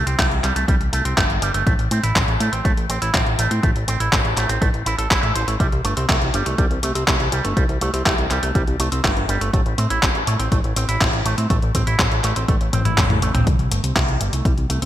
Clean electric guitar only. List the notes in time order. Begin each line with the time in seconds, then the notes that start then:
0.07 C4
0.19 A3
0.44 G3
0.56 A3
0.68 G3
0.93 A3
1.05 C4
1.17 A3
1.42 G3
1.54 A3
1.67 A3
1.91 C4
2.03 E4
2.16 C4
2.40 A3
2.53 C4
2.65 A3
2.89 C4
3.02 E4
3.14 C4
3.39 A3
3.51 C4
3.63 A3
3.88 C4
4.00 E4
4.12 C4
4.37 A3
4.49 C4
4.61 A3
4.86 E4
4.98 A4
5.11 E4
5.23 E5
5.35 C5
5.48 A3
5.60 G3
5.85 A3
5.97 C4
6.09 A3
6.34 G3
6.46 A3
6.58 G3
6.83 A3
6.95 C4
7.08 A3
7.32 G3
7.45 A3
7.57 G3
7.81 A3
7.94 C4
8.06 A3
8.30 G3
8.43 A3
8.55 G3
8.80 A3
8.92 C4
9.04 A3
9.29 G3
9.41 A3
9.53 A3
9.78 C4
9.90 E4
10.03 C4
10.27 A3
10.39 C4
10.52 A3
10.76 C4
10.89 E4
11.01 C4
11.26 A3
11.38 C4
11.50 A3
11.75 C4
11.87 E4
11.99 C4
12.24 A3
12.36 C4
12.48 A3
12.73 C4
12.85 E4
12.97 C4
13.22 A3
13.34 C4
13.47 G3
13.71 A3
13.84 C4
13.96 A3
14.21 G3
14.33 A3
14.45 G3
14.70 A3
14.82 C4